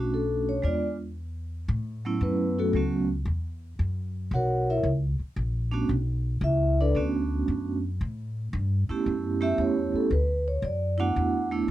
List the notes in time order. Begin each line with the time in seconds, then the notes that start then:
Already playing: B1 A3 C#4 D4 F#4
0.14 A4
0.49 C#5
0.62 E2 G#3 B3 D4 F4 D5
1.68 A2
2.05 F#3 A3 B3 C#4 E4
2.21 F#2 B3 B4
2.58 A3 E4 F#4 A4
2.73 C#2 F#3 A3 B3 C#4 F#4
3.25 E2
3.79 F#2
4.31 B1 F#4 C#5 F#5
4.35 A#4
4.70 E4 A#4 C#5 E5
4.83 C#2
5.19 muted upright bass stroke
5.36 A#1
5.72 A3 B3 C#4 D4 F#4
5.89 B1
6.41 C#2 E4 E5
6.81 D4 A4 B4 D5
6.95 D2 A3 B3 C#4 D4 F#4
7.48 F#2
8.01 A2
8.53 G2
8.89 A3 B3 C#4 E4 G4, muted upright bass stroke
9.06 F#2
9.41 A3 B3 C#4 E4 G4 E5
9.58 E2 C#5
9.93 A4, muted upright bass stroke
10.11 D2 B4
10.48 C#5
10.62 F#2 D5
10.98 A3 B3 D4 E4 F#4 F#5
11.16 E2
11.51 A3 B3 D4 E4